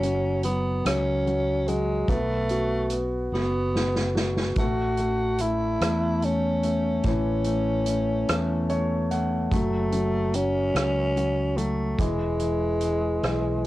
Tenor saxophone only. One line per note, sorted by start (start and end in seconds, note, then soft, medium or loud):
0.00 0.44 C#4 medium
0.45 0.83 B3 medium
0.87 1.69 C#4 medium
1.68 2.11 G#3 medium
2.10 3.06 A3 medium
3.33 4.22 B3 medium
4.59 5.43 F#4 medium
5.41 6.26 E4 medium
6.25 7.06 C#4 medium
7.08 9.07 C#4 medium
9.53 10.37 A3 medium
10.35 11.58 C#4 loud
11.57 12.02 A3 medium
12.00 13.67 G#3 medium